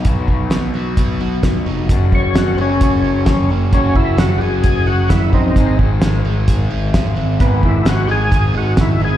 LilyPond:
<<
  \new Staff \with { instrumentName = "Tonewheel organ" } { \time 4/4 \key ges \major \tempo 4 = 131 r1 | r8 des''8 ges'8 <c' des'>8 des'4 <c' des'>8 r8 | des'8 fes'8 ges'8 <g' aes'>4 ges'8 fes'8 <c' ees'>8~ | <c' ees'>8 r2. r8 |
ces'8 fes'8 ges'8 <g' aes'>4 ges'8 fes'8 aes'8 | }
  \new Staff \with { instrumentName = "Overdriven electric guitar" } { \time 4/4 \key ges \major <ces ces' ees' ges' ces''>4 ces'8 ges'8 ces''8 ges'8 ces'8 ees'8 | ges,4 ges8 des'8 ges'8 des'8 ges8 bes8 | ges,4 ges8 des'8 ges'8 des'8 ges8 bes8 | aes,4 aes8 ees'8 aes'8 ees'8 aes8 c'8 |
aes,4 aes8 ees'8 aes'8 ees'8 aes8 c'8 | }
  \new Staff \with { instrumentName = "Overdriven electric guitar" } { \time 4/4 \key ges \major <ces ges ces' ees' ges' ces''>1 | <ges, des ges bes des' ges'>1 | <ges, des ges bes des' ges'>1 | <aes, ees aes c' ees' aes'>1 |
<aes, ees aes c' ees' aes'>1 | }
  \new Staff \with { instrumentName = "Picked electric bass" } { \clef bass \time 4/4 \key ges \major ces,8 ces,8 ces,8 ces,8 ces,8 ces,8 ces,8 f,,8 | ges,,8 ges,,8 ges,,8 ges,,8 ges,,8 ges,,8 ges,,8 ges,,8 | ges,,8 ges,,8 ges,,8 ges,,8 ges,,8 ges,,8 ges,,8 bes,,8 | aes,,8 aes,,8 aes,,8 aes,,8 aes,,8 aes,,8 aes,,8 aes,,8 |
aes,,8 aes,,8 aes,,8 aes,,8 aes,,8 aes,,8 aes,,8 aes,,8 | }
  \new DrumStaff \with { instrumentName = "Drums" } \drummode { \time 4/4 <hh bd>8 bd8 <hh sn>4 <hh bd>4 <hh bd sn>4 | <hh bd>8 bd8 <hh sn>4 <hh bd>4 <hh bd sn>4 | <hh bd>8 bd8 <hh sn>4 <hh bd>4 <hh bd sn>8 bd8 | <hh bd>8 bd8 <hh sn>4 <hh bd>4 <hh bd sn>4 |
<hh bd>8 bd8 <hh sn>4 <hh bd>4 <hh bd sn>4 | }
>>